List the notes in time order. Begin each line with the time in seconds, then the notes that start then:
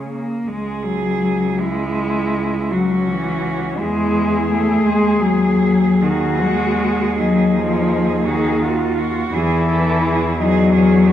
Already playing: C#3 G#4
0.07 A#3
0.47 C#2 G#3 G#4
0.85 F#3
1.59 G#3 E4
2.70 F#3 C#4 F#4
3.08 E3
3.80 E2 G#3 E4 G#4
4.51 A3
4.85 D#2 G#3 G#4
5.20 F#3
6.02 D#3 F#4
6.44 G#3
7.19 F#3 D#4
7.55 F3
8.26 D#3 F#4 G#4
8.63 F4 F#4
8.98 F4 F#4
9.34 E2 E3 E4 G#4
9.68 A4
10.04 G#4
10.38 F#3 D#4 G#4
10.73 C#4 G#4
11.08 B3 F#4